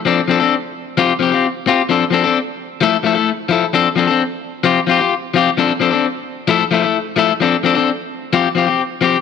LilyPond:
\new Staff \with { instrumentName = "Clean electric guitar" } { \time 4/4 \key f \major \tempo 4 = 130 <f c' d' a'>16 r16 <f c' d' a'>16 <c' d' a'>16 r4 <f c' f' g'>16 r16 <f c' g'>16 <c' f' g'>16 r8 <c' f' g'>16 r16 | <f c' d' a'>16 r16 <f c' d' a'>16 <c' d' a'>16 r4 <f a e' a'>16 r16 <f a e' a'>16 <a e' a'>16 r8 <f e' a'>16 r16 | <f c' d' a'>16 r16 <f c' d' a'>16 <c' d' a'>16 r4 <f c' f' g'>16 r16 <f c' f' g'>16 <f' g'>16 r8 <f c' f' g'>16 r16 | <f c' d' a'>16 r16 <f c' d' a'>16 <c' d' a'>16 r4 <f a e' a'>16 r16 <f a e' a'>16 <a e' a'>16 r8 <f a e' a'>16 r16 |
<f c' d' a'>16 r16 <f c' d' a'>16 <c' d' a'>16 r4 <f c' f' g'>16 r16 <f c' f' g'>16 <c' g'>16 r8 <f c' g'>16 r16 | }